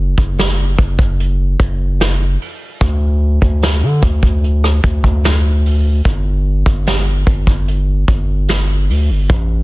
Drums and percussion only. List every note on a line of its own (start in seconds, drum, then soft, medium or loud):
0.18 kick medium
0.38 snare loud
0.38 closed hi-hat medium
0.78 kick medium
0.78 closed hi-hat medium
0.99 kick loud
1.20 closed hi-hat medium
1.59 kick loud
1.59 closed hi-hat medium
2.00 snare loud
2.00 closed hi-hat medium
2.42 open hi-hat medium
2.81 kick loud
2.81 closed hi-hat medium
3.42 kick medium
3.62 snare loud
3.62 closed hi-hat medium
4.02 kick medium
4.02 closed hi-hat medium
4.23 kick loud
4.44 closed hi-hat medium
4.64 cross-stick medium
4.83 kick loud
4.83 closed hi-hat medium
5.04 kick loud
5.24 snare loud
5.24 closed hi-hat medium
5.66 open hi-hat medium
6.05 kick loud
6.05 closed hi-hat medium
6.66 kick medium
6.86 snare loud
6.86 closed hi-hat medium
7.26 kick medium
7.26 closed hi-hat medium
7.47 kick loud
7.68 closed hi-hat medium
8.08 kick medium
8.08 closed hi-hat medium
8.48 snare loud
8.48 closed hi-hat medium
8.90 open hi-hat medium
9.30 kick loud
9.30 closed hi-hat medium